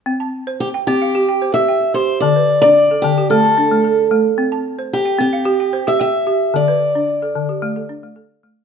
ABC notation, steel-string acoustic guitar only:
X:1
M:4/4
L:1/16
Q:1/4=111
K:C
V:1 name="Steel-string acoustic guitar"
z4 G2 G4- G e3 c2 | d3 d3 G2 A6 z2 | z4 G2 G4- G e e4 | d12 z4 |]